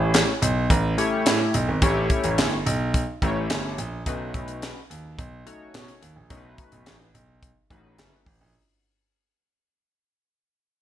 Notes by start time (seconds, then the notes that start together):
Already playing: A1 A3 C#4 E4 G4 C#5
0.14 snare, clap, closed hi-hat
0.42 B1, closed hi-hat
0.70 A1, kick, closed hi-hat
0.98 A3 C#4 E4 G4 C#5, closed hi-hat
1.26 A2, snare, clap, closed hi-hat
1.54 B1, closed hi-hat
1.68 G#1
1.82 A1 A3 C#4 E4 G4 C#5, kick, closed hi-hat
2.10 kick, closed hi-hat
2.24 A1, closed hi-hat
2.38 G1, snare, clap, closed hi-hat
2.66 B1, closed hi-hat
2.94 kick, closed hi-hat
3.22 A1 A3 C#4 E4 G4 C#5, kick, closed hi-hat
3.50 G1, snare, clap, closed hi-hat
3.78 A#1, closed hi-hat
4.06 B1 A3 C#4 D#4 F#4 B4, kick, closed hi-hat
4.34 B1, kick, closed hi-hat
4.48 closed hi-hat
4.62 snare, clap, closed hi-hat
4.90 D#2, closed hi-hat
5.18 B1, kick, closed hi-hat
5.46 A3 C#4 D#4 F#4 C#5, closed hi-hat
5.74 B2, snare, clap, closed hi-hat
5.88 closed hi-hat
6.02 D#2, closed hi-hat
6.16 A#1
6.30 B1 A3 C#4 D#4 F#4 A#4, kick, closed hi-hat
6.37 B4
6.58 kick, closed hi-hat
6.72 B1, closed hi-hat
6.86 A1, snare, clap, closed hi-hat
7.14 B1, closed hi-hat
7.43 kick, closed hi-hat
7.70 A1 A3 C#4 D#4 F#4 B4, kick, closed hi-hat
7.98 F#1, snare, clap, closed hi-hat
8.26 A1, kick, open hi-hat
8.41 A#1